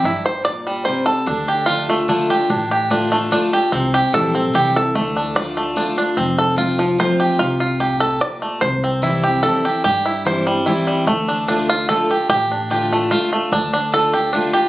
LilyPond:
<<
  \new Staff \with { instrumentName = "Five-string banjo" } { \time 3/4 \key d \minor \tempo 4 = 147 << { r8 c''8 d''4 c''8 a'8~ | a'4 f'4. r8 | r2. | r8 g'8 a'4 g'8 a'8~ |
a'4 d''4. r8 | r8 a'4. c''4 | f'8 r4 a'8 d''4 | c''2 a'4 |
g'4 c''4 r4 | r4. f'8 a'4 | g'2 f'4 | d'4 a'4 r4 | } \\ { <e' g'>4. g4. | d'8 g'4 a8 d'8 g'8 | d'8 g'8 d'8 a8 d'8 g'8 | c'4. c'4. |
a8 d'4 a8 d'8 d'8 | c'4 f'8 f4 g'8~ | g'8 f'8 g'4. a8 | r8 c'8 e'8 g'4 g'8~ |
g'8 e'4 g8 e'8 g8 | a8 d'8 d'4. g'8~ | g'8 d'8 g'8 a4 a8~ | a8 d'4 g'8 d'8 g'8 | } >> }
  \new Staff \with { instrumentName = "Steel-string acoustic guitar" } { \time 3/4 \key d \minor << { r2. | r4 <d a d' f'>8 <d' f'>8 <d a d' f'>8 <d' f'>8 | r4 <d a d' f'>8 <d' f'>8 <d a d' f'>8 <d' f'>8 | r4 <e g c' e'>8 <c' e'>8 <e g c' e'>8 <c' e'>8 |
r4 <d a d' f'>4 <d a d' f'>8 <d' f'>8 | r4 <f a c' f'>8 <c' f'>8 <f a c' f'>4 | r2. | r4 <e g c' e'>8 <c' e'>8 <e g c' e'>8 <c' e'>8 |
r4 <e g c' e'>8 <c' e'>8 <e g c' e'>4 | r4 <d a d' f'>4 <d a d' f'>8 <d' f'>8 | r4 <d a d' f'>8 <d' f'>8 <d a d' f'>8 <d' f'>8 | r4 <d a d' f'>8 <d' f'>8 <d a d' f'>8 <d' f'>8 | } \\ { g,4 bes,4 c4 | d2 r4 | a,2 r4 | c2 r4 |
d2 r4 | f,2 r4 | c4 a,4 bes,4 | c2 r4 |
g,2 r4 | d2 r4 | a,2 r4 | d2 r4 | } >> }
  \new Staff \with { instrumentName = "Upright bass" } { \clef bass \time 3/4 \key d \minor g,,2. | d,2. | a,,2. | c,4 bes,,4 c,4 |
d,2. | f,,2. | c,2. | c,2. |
g,2. | d,2. | a,,2. | d,2. | }
>>